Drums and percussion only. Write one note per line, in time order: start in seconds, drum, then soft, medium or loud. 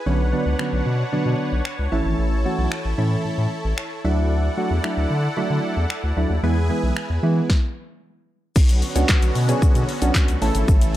0.59 finger snap loud
1.65 finger snap loud
2.72 finger snap loud
3.78 finger snap loud
4.84 finger snap loud
5.90 finger snap loud
6.97 finger snap loud
7.50 kick loud
7.50 snare medium
8.56 kick loud
8.56 crash loud
8.56 shaker medium
8.69 closed hi-hat medium
8.69 shaker soft
8.69 shaker medium
8.82 open hi-hat medium
8.82 shaker medium
8.96 closed hi-hat medium
8.96 shaker medium
9.09 kick loud
9.09 snare medium
9.09 clap loud
9.09 shaker medium
9.22 closed hi-hat medium
9.22 shaker medium
9.35 open hi-hat medium
9.35 shaker soft
9.49 closed hi-hat medium
9.49 shaker medium
9.62 kick loud
9.62 shaker medium
9.75 closed hi-hat soft
9.75 shaker soft
9.89 open hi-hat medium
9.89 shaker soft
10.02 closed hi-hat medium
10.02 shaker medium
10.02 shaker soft
10.14 kick loud
10.14 snare medium
10.14 clap loud
10.14 shaker medium
10.28 closed hi-hat medium
10.28 shaker medium
10.28 shaker soft
10.42 open hi-hat medium
10.42 shaker medium
10.55 closed hi-hat medium
10.55 shaker medium
10.68 kick loud
10.68 shaker medium
10.81 closed hi-hat medium
10.81 shaker medium
10.81 shaker soft